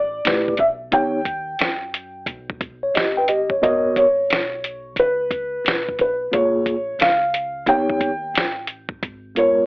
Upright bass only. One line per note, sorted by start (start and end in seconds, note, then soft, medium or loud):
0.00 0.21 A1 medium
0.25 0.89 B1 medium
0.93 1.57 D#2 loud
1.61 2.25 F#2 medium
2.26 2.91 B1 medium
2.94 3.59 A1 medium
3.63 4.27 G#1 medium
4.30 4.96 B1 medium
4.96 5.61 C#2 medium
5.64 6.29 B1 medium
6.33 6.97 A#1 medium
6.99 7.63 C#2 medium
7.66 8.31 D#2 loud
8.34 8.99 A1 medium
9.03 9.66 G#1 medium